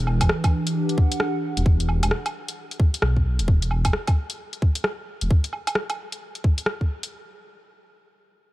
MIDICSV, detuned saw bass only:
0, 0, Header, 1, 2, 480
1, 0, Start_track
1, 0, Key_signature, 1, "minor"
1, 0, Tempo, 454545
1, 1753, Time_signature, 4, 2, 24, 8
1, 9007, End_track
2, 0, Start_track
2, 0, Title_t, "Detuned saw bass"
2, 0, Program_c, 0, 39
2, 0, Note_on_c, 0, 28, 96
2, 208, Note_off_c, 0, 28, 0
2, 228, Note_on_c, 0, 28, 80
2, 308, Note_off_c, 0, 28, 0
2, 1661, Note_on_c, 0, 28, 80
2, 1745, Note_off_c, 0, 28, 0
2, 1754, Note_on_c, 0, 28, 101
2, 2124, Note_off_c, 0, 28, 0
2, 2147, Note_on_c, 0, 28, 79
2, 2228, Note_off_c, 0, 28, 0
2, 3197, Note_on_c, 0, 35, 82
2, 3591, Note_on_c, 0, 26, 84
2, 3607, Note_off_c, 0, 35, 0
2, 3670, Note_off_c, 0, 26, 0
2, 3677, Note_on_c, 0, 28, 99
2, 4046, Note_off_c, 0, 28, 0
2, 4069, Note_on_c, 0, 28, 78
2, 4149, Note_off_c, 0, 28, 0
2, 5515, Note_on_c, 0, 28, 78
2, 5592, Note_off_c, 0, 28, 0
2, 9007, End_track
0, 0, End_of_file